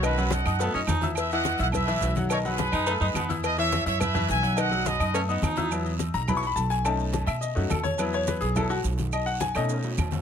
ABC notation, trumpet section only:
X:1
M:4/4
L:1/8
Q:1/4=211
K:E
V:1 name="Trumpet section"
[FB]2 [df]2 z4 | [Be] [df]2 [df] [Be]3 z | [Ac] [GB]6 z | [Bd] [ce]2 [ce] [Be]2 [eg]2 |
[df]2 [Bd]2 z4 | z8 | z8 | z8 |
z8 |]